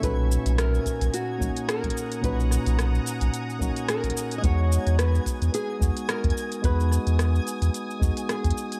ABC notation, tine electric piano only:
X:1
M:4/4
L:1/8
Q:"Swing 16ths" 1/4=109
K:B
V:1 name="Tine electric piano"
[A,,CDF]4- [A,,CDF] [A,CDF]3 | [A,,CDF]4- [A,,CDF] [A,CDF]3 | [G,B,DF]4- [G,B,DF] [G,B,DF]3 | [G,B,DF]4- [G,B,DF] [G,B,DF]3 |]